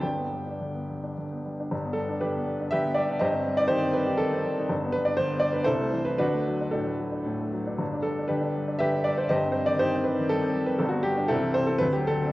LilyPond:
<<
  \new Staff \with { instrumentName = "Upright piano" } { \time 3/4 \key g \major \tempo 4 = 120 <g' g''>2 r4 | r8 a'8 <d' g' b'>4 <g' b' e''>8 d''8 | <g' c'' ees''>8. d''16 <ees' g' c''>8 b'16 g'16 a'4 | r8 b'16 d''16 c''8 d''16 b'16 <e' a' c''>8. b'16 |
<d' fis' b'>4 <d' fis' a'>4. r8 | r8 a'8 <d' g' b'>4 <g' b' e''>8 d''16 c''16 | <g' c'' ees''>8 c''16 d''16 <ees' g' c''>8 b'8 a'8. b'16 | a'16 fis'16 g'8 <c' e' a'>8 c''16 a'16 b'16 g'16 a'8 | }
  \new Staff \with { instrumentName = "Upright piano" } { \clef bass \time 3/4 \key g \major <g,, g,>16 b16 g16 d'16 d16 b16 g16 d'16 d16 b16 g16 d'16 | <g,, g,>16 b16 g16 d'16 d16 b16 g16 d'16 d16 b16 g16 d'16 | <g,, g,>16 c'16 g16 ees'16 ees16 c'16 g16 ees'16 ees16 c'16 g16 ees'16 | <g,, g,>16 b16 g16 d'16 d16 b16 g16 d'16 c,16 a16 e16 e'16 |
d,16 a16 fis16 d'16 a,16 a16 fis16 d'16 a,16 a16 fis16 d'16 | <g,, g,>16 d'16 g16 d'16 d16 d'16 g16 d'16 d16 d'16 g16 d'16 | <g,, g,>16 c'16 g16 ees16 g16 c'16 g16 ees16 g16 c'16 g16 ees16 | <g,, g,>16 b16 g16 d'16 c,16 e16 c16 c'16 d,16 fis16 d16 c'16 | }
>>